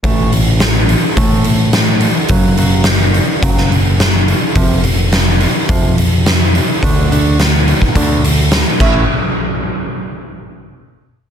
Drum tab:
CC |----------------|----------------|----------------|--------------x-|
HH |o-o-o-o-o-o-o-o-|o-o-o-o-o-o-o-o-|o-o-o-o-o-o-o-o-|o-o-o-o-o-o-o---|
SD |----o-------o---|----o----o--o---|----o-------o---|----o-------o---|
BD |o-------o-------|o-------o-------|o-------o-------|o------oo-----o-|

CC |----------------|
HH |----------------|
SD |----------------|
BD |----------------|